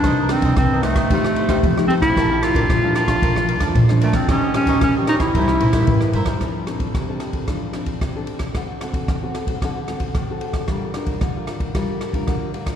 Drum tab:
RD |x-xxx-xxx-xxx-xx|x-xxx-xxx-xxx-xx|x-xxx-xxx-xxx-xx|x-xxx-xxx-xxx-xx|
SD |r-r-r-rr-r-r-r-r|r-r-r-rr-r-r-r-r|r-r-r-rr-r-r-r-r|r-r-r-r-r-r-r--r|
BD |o--oo--oo--oo--o|o--oo--oo--oo--o|o--oo--oo--oo--o|o--oo--oo--oo--o|

RD |x-xxx-xxx-xxx-xx|x-xxx-xxx-xxx-xx|
SD |r-r-r-r-r-r-r--r|r-r-r-r-r-r-r--r|
BD |o--oo--oo--oo--o|o--oo--oo--oo--o|